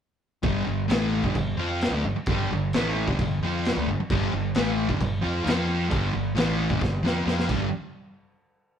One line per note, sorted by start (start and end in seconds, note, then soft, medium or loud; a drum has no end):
0.43 0.65 G1 loud
0.43 0.64 G2 loud
0.43 0.65 D3 loud
0.43 0.66 G3 loud
0.43 kick loud
0.43 crash medium
0.65 0.88 G1 medium
0.65 0.84 G2 medium
0.65 0.85 D3 medium
0.88 1.21 A1 loud
0.88 1.23 A2 loud
0.88 1.23 E3 loud
0.88 1.24 A3 loud
0.88 snare loud
0.88 crash medium
1.24 1.35 G1 loud
1.24 1.34 G2 medium
1.24 1.35 D3 loud
1.24 kick medium
1.35 1.55 G1 medium
1.35 1.54 G2 medium
1.35 1.54 D3 medium
1.35 kick loud
1.35 crash medium
1.56 1.89 F2 medium
1.56 1.92 F3 loud
1.56 1.92 C4 loud
1.56 1.92 F4 loud
1.81 snare loud
1.81 crash medium
1.91 2.02 D2 medium
1.91 2.04 D3 medium
1.91 2.04 A3 loud
2.04 2.15 G1 medium
2.04 2.15 G2 medium
2.04 2.16 D3 medium
2.16 muted distorted electric guitar stroke medium
2.26 2.48 G1 loud
2.26 2.50 G2 loud
2.26 2.51 D3 loud
2.26 kick loud
2.26 crash medium
2.31 2.51 G3 loud
2.51 2.72 G1 medium
2.51 2.69 G2 medium
2.51 2.70 D3 medium
2.73 3.06 A1 medium
2.73 3.07 A2 medium
2.73 3.08 E3 medium
2.73 3.08 A3 loud
2.73 snare loud
2.73 crash medium
3.08 3.18 G1 medium
3.08 3.18 G2 loud
3.08 3.19 D3 loud
3.08 kick medium
3.19 3.40 G1 medium
3.19 3.38 G2 medium
3.19 3.38 D3 medium
3.19 kick loud
3.19 crash medium
3.40 3.73 F2 medium
3.40 3.76 F3 loud
3.40 3.76 C4 loud
3.45 3.77 F4 medium
3.65 snare medium
3.65 crash medium
3.76 3.86 D2 medium
3.76 3.86 D3 medium
3.76 3.88 A3 loud
3.86 3.97 G1 medium
3.86 3.98 G2 medium
3.86 3.98 D3 medium
3.99 muted fingered electric bass stroke soft
3.99 muted distorted electric guitar stroke medium
4.10 4.32 G1 loud
4.10 4.32 G2 loud
4.10 4.32 D3 loud
4.10 4.33 G3 loud
4.10 kick loud
4.10 crash medium
4.33 4.54 G1 medium
4.33 4.51 G2 medium
4.33 4.51 D3 medium
4.55 4.87 A1 loud
4.55 4.88 A2 medium
4.55 4.89 E3 loud
4.55 4.89 A3 loud
4.55 snare loud
4.55 crash medium
4.88 4.99 G1 loud
4.88 4.99 G2 loud
4.88 4.99 D3 loud
4.88 kick medium
5.00 5.22 G1 medium
5.00 5.18 G2 medium
5.00 5.18 D3 medium
5.00 kick loud
5.00 crash medium
5.21 5.45 F2 loud
5.21 5.43 F3 medium
5.21 5.44 C4 loud
5.21 5.44 F4 loud
5.44 5.88 F2 medium
5.44 5.89 F3 medium
5.44 5.90 C4 loud
5.44 5.90 F4 loud
5.44 crash medium
5.48 snare loud
5.88 6.12 G1 loud
5.88 6.11 G2 medium
5.88 6.12 D3 medium
5.88 6.12 G3 medium
5.88 kick loud
5.88 crash medium
6.13 6.34 G1 medium
6.13 6.31 G2 medium
6.13 6.31 D3 medium
6.35 6.67 A1 loud
6.35 6.68 A2 medium
6.35 6.69 E3 medium
6.35 6.69 A3 loud
6.35 snare loud
6.35 crash medium
6.70 6.80 G1 loud
6.70 6.81 G2 medium
6.70 6.81 D3 loud
6.70 kick medium
6.81 7.02 G1 medium
6.81 7.00 G2 medium
6.81 7.00 D3 medium
6.81 kick loud
6.81 snare medium
7.03 7.24 F2 medium
7.03 7.24 F3 loud
7.03 7.25 C4 loud
7.03 7.26 F4 loud
7.03 snare medium
7.25 7.47 F2 medium
7.25 7.48 F3 loud
7.25 7.48 C4 loud
7.25 7.49 F4 loud
7.25 snare medium
7.39 snare medium
7.48 7.70 G1 medium
7.48 7.66 G2 medium
7.48 7.67 D3 medium
7.48 7.67 G3 loud
7.48 kick loud
7.48 crash medium